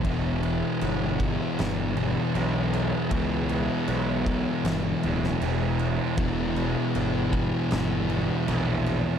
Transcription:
<<
  \new Staff \with { instrumentName = "Distorted electric guitar" } { \clef bass \time 4/4 \key e \dorian \tempo 4 = 78 <e, b, e>1 | <e, b, e>1 | <e, b, e>1 | }
  \new Staff \with { instrumentName = "Distorted electric guitar" } { \clef bass \time 4/4 \key e \dorian <e, b, e>2~ <e, b, e>8 <e, b, e>8 <e, b, e>4 | <e, b, e>2~ <e, b, e>8 <e, b, e>8 <e, b, e>4 | <e, b, e>2~ <e, b, e>8 <e, b, e>8 <e, b, e>4 | }
  \new Staff \with { instrumentName = "Picked electric bass" } { \clef bass \time 4/4 \key e \dorian e,,4 g,,4 g,,4 b,,4 | cis,4 b,,4 g,,8 d,,8 e,,4 | e,,4 g,,4 g,,4 ais,,4 | }
  \new DrumStaff \with { instrumentName = "Drums" } \drummode { \time 4/4 <cymc bd>8 cymc8 cymc8 <cymc bd>8 <cymc sn>8 cymc8 cymc8 cymc8 | <cymc bd>8 cymc8 cymc8 <cymc bd>8 <cymc sn>8 cymc16 sn16 cymc8 cymc8 | <cymc bd>8 cymc8 cymc8 <cymc bd>8 <cymc sn>8 cymc8 cymc8 cymc8 | }
>>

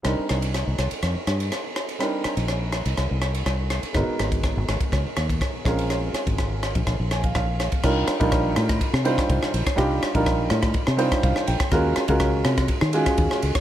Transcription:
<<
  \new Staff \with { instrumentName = "Grand piano" } { \time 4/4 \key bes \major \tempo 4 = 123 << { r1 | r1 | r1 | r2 r8 aes''16 f''16 f''4 |
r1 | r2 r8 ees''8 f''8 g''8 | r1 | } \\ { <g c' d' ees' bes'>1 | <g c' d' ees' bes'>1 | <aes ces' ees' ges' bes'>2.~ <aes ces' ees' ges' bes'>8 <aes c' des' f' bes'>8~ | <aes c' des' f' bes'>2.~ <aes c' des' f' bes'>8 r8 |
<g d' ees' f' bes'>8 r16 <g d' ees' f' bes'>4~ <g d' ees' f' bes'>16 r8 <g d' ees' f' c''>4~ <g d' ees' f' c''>16 r16 | <g d' ees' f' g'>8 r16 <g d' ees' f' bes'>4~ <g d' ees' f' bes'>16 r8 <g d' ees' f' c''>4~ <g d' ees' f' c''>16 r16 | <aes des' f' ges' bes'>8 r16 <aes des' f' ges' bes'>4~ <aes des' f' ges' bes'>16 r8 <aes des' f' ges' aes'>4~ <aes des' f' ges' aes'>16 r16 | } >> }
  \new Staff \with { instrumentName = "Fingered electric bass" } { \clef bass \time 4/4 \key bes \major c,16 r16 c,8. c,16 c,16 r16 f,16 r16 g,8 r4 | r8. bes,,4 c,16 c,16 c,8. c,8. r16 | aes,,16 r16 aes,,8. aes,,16 aes,,16 r16 des,16 r16 ees,8 r8 bes,,8~ | bes,,8 r16 aes,,4 bes,,16 bes,,16 bes,,8. bes,,8. r16 |
c,8 r16 bes,,8. a,8 r16 c8 r16 c,16 r16 bes,,16 r16 | c,8 r16 bes,,8. a,8 r16 c8 r16 c,16 r16 bes,,16 r16 | ees,8 r16 des,8. c8 r16 ees8 r16 ees,16 r16 des,16 r16 | }
  \new DrumStaff \with { instrumentName = "Drums" } \drummode { \time 4/4 <cymr ss>8 <cymr ss>16 cymr16 <cymr ss>8 <cymr ss>16 cymr16 <cymr ss>8 <cymr ss>16 cymr16 <cymr ss>8 <cymr ss>16 cymr16 | <cymr ss>8 <cymr ss>16 cymr16 <cymr ss>8 <cymr ss>16 cymr16 <cymr ss>8 <cymr ss>16 cymr16 <cymr ss>8 <cymr ss>16 cymr16 | <bd cymr ss>8 <cymr ss>16 <bd cymr>16 <bd cymr ss>8 <cymr ss>16 <bd cymr>16 <bd cymr ss>8 <cymr ss>16 <bd cymr>16 <bd cymr ss>8 <bd cymr ss>16 cymr16 | <cymr ss>8 <cymr ss>16 <bd cymr>16 <bd cymr ss>8 <cymr ss>16 <bd cymr>16 <bd cymr ss>8 <cymr ss>16 <bd cymr>16 <bd cymr ss>8 <cymr ss>16 <bd cymr>16 |
<cymc bd ss>8 <cymr ss>16 <bd cymr>16 <bd cymr ss>8 <cymr ss>16 <bd cymr ss>16 <bd cymr>16 ss16 cymr16 <bd cymr ss>16 <bd cymr>16 ss16 cymr16 <bd cymr ss>16 | <bd cymr ss>8 <cymr ss>16 <bd cymr>16 <bd cymr ss>8 <cymr ss>16 <bd cymr ss>16 <bd cymr>16 ss16 cymr16 <bd cymr ss>16 <bd cymr>16 ss16 cymr16 <bd cymr ss>16 | <bd cymr ss>8 <cymr ss>16 <bd cymr>16 <bd cymr ss>8 <cymr ss>16 <bd cymr ss>16 <bd cymr>16 ss16 cymr16 <bd cymr ss>16 <bd cymr>16 ss16 cymr16 <bd cymr ss>16 | }
>>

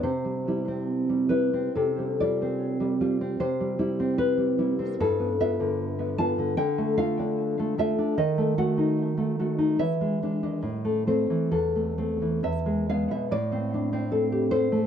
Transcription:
\new Staff \with { instrumentName = "Nylon-string guitar" } { \time 2/4 \key c \major \tempo 4 = 74 << { c''4. b'8 | a'8 d''4. | c''4 b'4 | a'8 e''4 a''8 |
\key a \minor g''8 f''4 e''8 | dis''8 fis''8 r4 | e''4. c''8 | a'4 e''8 f''16 e''16 |
d''4. c''8 | } \\ { c16 g16 <g e'>16 c'8 g16 <g e'>16 c'16 | c16 g16 <g f'>16 c'8 g16 <g f'>16 c'16 | c16 g16 <g e'>16 c'8 g16 <g e'>16 c'16 | g,16 b16 <b f'>16 d8 b16 <b f'>16 d16 |
d16 a16 <a f'>16 d'8 a16 <a f'>16 d'16 | dis16 a16 <a fis'>16 dis'8 a16 <a fis'>16 dis'16 | e16 gis16 <gis d'>16 d'16 a,16 a16 <a c'>16 e16 | e,16 a16 <a c'>16 e16 e,16 gis16 <gis b>16 b,16 |
a,16 c'16 d'16 c'16 a'16 g'16 a'16 a16 | } >> }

